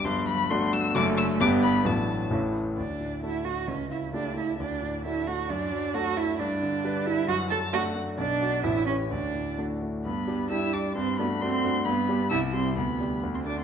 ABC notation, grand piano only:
X:1
M:2/4
L:1/8
Q:1/4=133
K:Dmix
V:1 name="Grand piano"
[G,,,G,,]2 [A,DF]2 | [K:D] [F,,,F,,A,DA]2 [G,,,G,,B,DG]2 | [A,,,A,,A,DF]2 [A,,,A,,A,CE]2 | D,, A,, [A,DF] A, |
C,, C, [A,EG] A, | D,, A,, [A,DF] A, | F,, F, [A,DA] z | G,, D, [G,DB] G, |
F,, F, [A,DF] A, | B,,, [DF] A,,, [CG] | D,, A,, [A,DF] A, | [K:G] G,, [G,DG] [G,DG] [G,DG] |
G,, [A,DF] [A,DF] [A,DF] | G,, [G,DG] C,, [G,EG] | D,, [G,DG] D,, [A,DF] |]